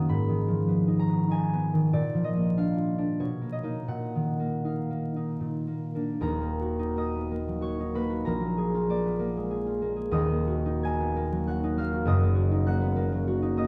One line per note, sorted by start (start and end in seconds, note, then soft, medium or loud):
0.00 0.12 F#2 medium
0.00 0.12 D#3 medium
0.00 0.11 F#3 soft
0.00 0.11 A#3 medium
0.00 0.86 D#4 soft
0.00 1.97 D#5 medium
0.00 0.12 F#5 medium
0.00 0.12 A#5 medium
0.00 1.97 D#6 medium
0.09 1.98 G#2 medium
0.09 1.97 B5 medium
0.28 1.73 D#3 soft
0.48 2.13 F3 soft
0.68 1.08 B3 soft
0.88 1.29 D#4 soft
0.99 1.54 A#5 medium
1.09 1.52 B3 medium
1.30 1.97 D#4 soft
1.30 1.97 G#5 medium
1.53 1.97 B3 soft
1.74 1.97 D#3 medium
1.93 3.23 A#2 medium
1.93 3.22 D5 medium
2.14 3.23 F3 soft
2.24 2.78 D#5 medium
2.35 3.40 A#3 soft
2.57 2.97 D4 soft
2.57 3.24 F5 medium
2.77 3.23 F4 soft
2.98 3.23 D4 soft
3.20 3.92 B2 soft
3.20 3.78 C#5 medium
3.41 3.62 A#3 soft
3.52 5.42 D#5 medium
3.63 4.38 A#3 soft
3.63 4.64 D#4 soft
3.88 5.39 A#2 soft
3.88 5.17 F#5 medium
4.15 5.43 D#3 soft
4.40 4.89 A#3 soft
4.65 5.15 D#4 soft
4.65 6.24 F5 soft
4.90 5.66 A#3 soft
5.16 5.43 D#4 soft
5.40 6.24 A#2 soft
5.67 5.94 A#3 soft
5.95 6.40 A#3 soft
5.95 6.25 D4 soft
6.20 8.27 D#1 medium
6.20 8.27 D#2 medium
6.20 8.26 A#4 medium
6.20 8.24 A#5 medium
6.41 6.96 A#3 soft
6.61 7.60 F#4 medium
6.79 7.78 D#4 medium
6.97 7.30 A#3 soft
6.97 8.28 D#5 medium
6.97 8.28 D#6 medium
7.15 7.43 B3 soft
7.31 7.94 A#3 medium
7.48 8.28 F#3 medium
7.61 8.09 F#4 medium
7.61 8.27 C#5 medium
7.61 8.15 C#6 medium
7.80 8.28 D#4 soft
7.95 8.39 A#3 medium
7.95 8.28 B4 medium
7.95 8.47 B5 medium
8.10 8.27 F#4 medium
8.25 10.14 A#1 medium
8.25 12.17 A#4 medium
8.25 12.15 A#5 medium
8.40 8.88 A#3 medium
8.58 9.49 G#4 medium
8.74 9.65 F4 medium
8.89 9.18 A#3 medium
8.89 10.16 D5 medium
8.89 10.15 D6 medium
9.06 9.31 B3 soft
9.19 9.80 A#3 medium
9.37 10.15 G#3 medium
9.51 9.95 G#4 medium
9.66 10.15 F4 medium
9.82 10.29 A#3 medium
9.96 10.14 G#4 medium
10.11 12.08 D#1 medium
10.11 12.09 D#2 medium
10.11 12.06 D#5 medium
10.11 12.06 D#6 medium
10.30 10.83 A#3 medium
10.47 11.47 F#4 medium
10.65 11.62 D#4 medium
10.83 11.15 A#3 medium
10.83 12.10 G#5 medium
10.83 11.89 G#6 loud
11.00 11.26 B3 medium
11.16 11.76 A#3 medium
11.32 13.11 F#3 medium
11.47 11.92 F#4 medium
11.47 12.67 F#5 medium
11.47 12.66 F#6 medium
11.64 12.50 D#4 medium
11.77 12.21 A#3 medium
11.77 12.10 F5 medium
11.77 12.29 F6 loud
11.93 12.33 F#4 medium
12.05 13.67 F#1 medium
12.05 13.67 F#2 medium
12.05 13.57 D#5 medium
12.05 13.56 D#6 medium
12.22 12.66 A#3 medium
12.35 13.26 F#4 medium
12.51 13.41 D#4 medium
12.67 12.95 A#3 medium
12.67 13.67 F#5 medium
12.67 13.67 F#6 medium
12.81 13.07 B3 medium
12.96 13.56 A#3 medium
13.12 13.67 F#3 medium
13.28 13.67 F#4 medium
13.42 13.67 D#4 medium
13.57 13.67 A#3 medium
13.57 13.67 D#5 medium
13.57 13.67 D#6 loud